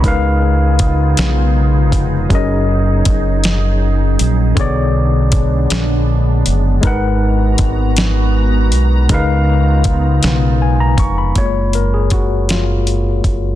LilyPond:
<<
  \new Staff \with { instrumentName = "Tine electric piano" } { \time 6/8 \key fis \major \tempo 4. = 53 << { b''16 r2 r8. | r2. | r2. | r2. |
r2 gis''16 ais''16 cis'''16 b''16~ | b''16 r2 r8. | } \\ { <cis gis dis' ais' b' eis''>2. | <fis cis' gis' ais' dis''>2. | <d b gis' cis'' d''>2. | <gis dis' ais' b' fis''>2. |
<cis gis dis' ais' b' eis''>2. | cis''8 ais'16 gis'16 fis'8 eis'4. | } >> }
  \new Staff \with { instrumentName = "Tine electric piano" } { \time 6/8 \key fis \major r2. | r2. | r2. | r2. |
r2. | <gis ais eis'>4. r4. | }
  \new Staff \with { instrumentName = "Ambient pad" } { \time 6/8 \key fis \major << { <eis' gis'>2.~ | <eis' gis'>2. | <b d'>2. | <b ais''>2. |
eis'2. | r2. | } \\ { <cis b dis'>2. | fis2. | gis2. | fis'2. |
<cis b dis'>2. | r2. | } >> }
  \new Staff \with { instrumentName = "Fingered electric bass" } { \clef bass \time 6/8 \key fis \major cis,4. b,,4 eis,,8 | fis,,4 fis,,4. ais,,8 | b,,4. ais,,4 fis,,8 | gis,,4 gis,,4. b,,8 |
cis,4. b,,4 eis,,8 | fis,,2~ fis,,8 fis,,8 | }
  \new DrumStaff \with { instrumentName = "Drums" } \drummode { \time 6/8 <hh bd>4 <hh bd>8 <hh sn>4 <hh bd>8 | <hh bd>4 <hh bd>8 <hh sn>4 hh8 | <hh bd>4 <hh bd>8 <hh sn>4 hh8 | <hh bd>4 <hh bd>8 <hh sn>4 hh8 |
<hh bd>4 <hh bd>8 <hh sn>4 <hh bd>8 | <hh bd>8 hh8 <hh bd>8 <hh sn>8 hh8 <hh bd>8 | }
>>